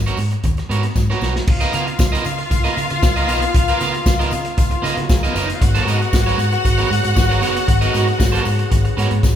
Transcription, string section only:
1.48 F4 F5
5.01 F#3 F#4
5.09 G#3 G#4
5.18 A#3 A#4
5.27 B3 B4
5.35 C#4 C#5
5.44 D#4 D#5
5.53 F4 F5
5.61 F#4 F#5

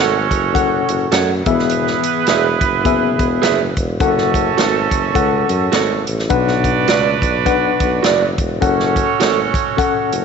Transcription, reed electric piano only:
0.54 C#4 A4 F#5
1.46 E3 B3 G#4 E5
2.84 B3 G#4 E5
4.00 C#4 A4 F#5
5.14 C#4 A4 F#5
6.29 B2 D4 B4 F#5
7.45 D4 B4 F#5
8.61 C#4 A4 F#5
9.77 C#4 A4 F#5

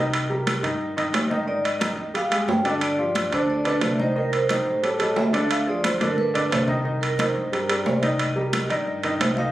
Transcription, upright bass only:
Already playing: C2
0.63 G2
1.13 G#2
1.97 D#2
2.48 G2
3.32 D2
3.82 C2
4.66 A1
5.16 D2
6.00 G1
6.51 C2
7.35 G2
7.86 C2
8.70 G2
9.20 C2

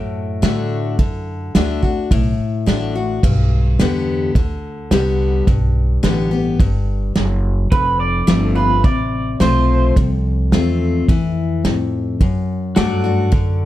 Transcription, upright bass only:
Already playing: F#2
0.43 A2
0.99 F#2
1.55 D2
2.11 B1
2.39 muted upright bass stroke
2.67 A1
3.23 B1
3.79 E2
4.35 D2
4.91 C2
5.47 B1
6.03 A1
6.59 G1
7.16 F#1
7.72 F1
8.28 G1
8.84 A1
9.40 B1
9.97 C2
10.52 E2
11.09 F2
11.64 A2
12.21 F#2
12.77 G2
13.33 F#2

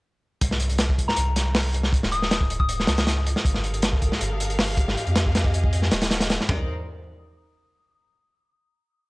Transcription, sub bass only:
0.42 C2
1.17 C2
2.03 D#1
2.88 C#2
3.45 G1
4.21 G1
5.07 F2
5.92 D#1
6.49 C2

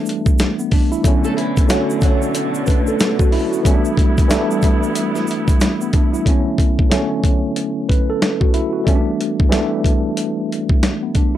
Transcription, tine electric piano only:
Already playing: E3 G3 A3 B3 D4
0.59 B3
0.73 D4
0.92 E4
1.03 D3 F#3 A3 B3
1.08 C#4
1.67 D3 F#3 A3 B3
1.72 C#4
2.67 B4
2.88 A4
3.19 F#4
3.32 E4
3.51 F#4
3.63 E3 G3 A3 B3
3.67 C#4
3.74 D4
4.28 E3 G3 A3 B3
4.32 D4
5.81 B3
5.95 D4
6.13 E4
6.25 D3 F#3 A3 B3
6.29 C#4
6.89 D3 F#3 A3 B3
6.94 C#4
7.89 B4
8.10 A4
8.41 F#4
8.54 E4
8.73 F#4
8.84 E3 G3 A3 B3
8.89 C#4
8.95 D4
9.49 E3 G3 A3 B3
9.54 D4
11.03 B3
11.16 D4

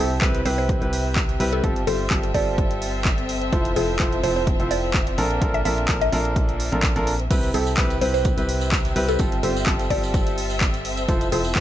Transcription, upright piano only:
0.00 C3 C4 E4 G4 A4
0.22 C3 C4 E4 G4 B4
0.46 C3 C4 E4 G4 B4
0.82 C3 C4 E4 G4 B4
1.40 G3 C4 E4 G4 B4
1.64 G3 C4 F4 G4 A4
1.87 G3 C4 F4 G4 C5
2.11 G3 C4 F4 G4 A4
2.34 G3 C4 F4 G4 A4
3.53 F3 E4 F4 A4 C5
3.76 F3 E4 F4 A4 C5
4.00 F3 E4 F4 A4 C5
4.23 F3 E4 F4 A4 C5
4.60 F3 E4 F4 A4 C5
5.18 A#2 D4 F4 A4 A#4
5.42 A#2 D4 F4 A4 A#4
5.65 A#2 D4 F4 A4 A#4
5.89 A#2 D4 F4 A4 A#4
6.12 A#2 D4 F4 A4 A#4
6.72 A#2 D4 F4 A4 A#4
6.96 A#2 D4 F4 A4 A#4
7.31 C3 C4 E4 G4 B4
7.54 C3 C4 E4 G4 A4
7.78 C3 C4 E4 G4 B4
8.01 C3 C4 E4 G4 B4
8.38 C3 C4 E4 G4 B4
8.96 G3 C4 E4 G4 B4
9.20 G3 C4 F4 G4 A4
9.43 G3 C4 F4 G4 C5
9.67 G3 C4 F4 G4 A4
9.90 G3 C4 F4 G4 A4
11.09 F3 E4 F4 A4 C5
11.32 F3 E4 F4 A4 C5
11.56 F3 E4 F4 A4 C5

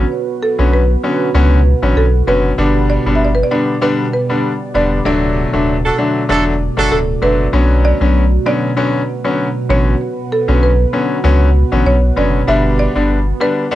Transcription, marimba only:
Already playing: C#5
0.42 A4
0.73 B4
1.97 A4
2.28 B4
2.90 D5
3.16 E5
3.25 D5
3.35 B4
3.43 D5
3.52 D5
3.83 B4
4.13 B4
4.75 D5
5.06 D5
6.92 A4
7.23 B4
7.85 D5
8.46 D5
9.70 C#5
10.32 A4
10.63 B4
11.86 C#5
12.17 D5
12.48 E5
12.79 D5
13.41 B4

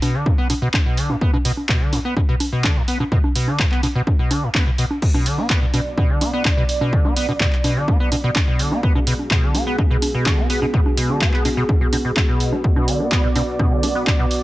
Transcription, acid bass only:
0.02 B2
0.14 D3
0.26 A2
0.38 B3
0.50 B2
0.62 B2
0.86 B2
0.97 D3
1.10 A2
1.21 B3
1.33 B2
1.45 B2
1.69 B2
1.81 D3
1.93 A2
2.05 B3
2.17 B2
2.29 B2
2.52 B2
2.64 D3
2.76 A2
2.88 B3
3.00 B2
3.12 B2
3.36 B2
3.48 D3
3.59 A2
3.72 B3
3.83 B2
3.95 B2
4.19 B2
4.31 D3
4.43 A2
4.55 B3
4.67 B2
4.78 B2
5.14 B2
5.26 D3
5.38 B3
5.50 B3
5.62 B2
5.74 B2
5.98 B2
6.10 D3
6.21 B3
6.34 B3
6.45 B2
6.57 B2
6.81 B2
6.93 D3
7.05 B3
7.17 B3
7.29 B2
7.40 B2
7.64 B2
7.76 D3
7.88 B3
8.00 B3
8.12 B2
8.24 B2
8.48 B2
8.59 D3
8.72 B3
8.83 B3
8.95 B2
9.07 B2
9.31 B2
9.43 D3
9.55 B3
9.67 B3
9.78 B2
9.91 B2
10.14 B2
10.26 D3
10.38 B3
10.50 B3
10.62 B2
10.74 B2
10.97 B2
11.10 D3
11.21 B3
11.33 B3
11.45 B2
11.57 B2
11.81 B2
11.93 B2
12.05 B2
12.16 A3
12.29 B2
12.52 B3
12.76 B2
12.88 D3
13.00 B3
13.12 B3
13.24 B2
13.36 B2
13.59 B2
13.72 D3
13.83 B3
13.95 B3
14.07 B2
14.19 B2

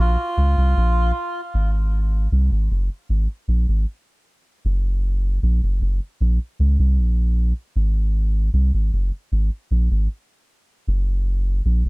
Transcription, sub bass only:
0.00 A#1
0.37 C#2
0.57 C2
0.77 A#1
1.54 G#1
2.32 C2
2.52 G#1
2.71 F#1
3.09 G#1
3.48 A#1
3.68 G#1
4.65 F#1
5.43 A#1
5.63 F#1
5.81 F#1
6.21 A#1
6.59 C#2
6.79 C2
6.98 A#1
7.76 G#1
8.53 C2
8.74 G#1
8.93 F#1
9.32 G#1
9.71 A#1
9.91 G#1
10.88 F#1
11.65 A#1
11.85 F#1

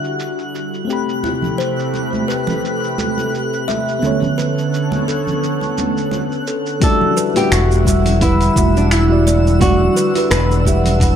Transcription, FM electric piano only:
Already playing: G3 E4 F#4 D5
0.85 A3 C4
0.90 G4 B5
3.99 D3 B3
4.04 A4 C#5
6.80 G3 E4 F#4 D5
7.34 G3 E4 F#4 B4
7.85 G3 E4 F#5
7.89 E5
8.20 G3 E4 B4 F#5
8.55 G3 E4 E5 F#5
9.08 G3 E4 F#4 D5
9.59 G3 E4 F#4 D5
10.14 G3 E4 F#4 B4
10.65 G3 E4 E5 F#5
10.99 G3 E4 F#5
11.04 B4

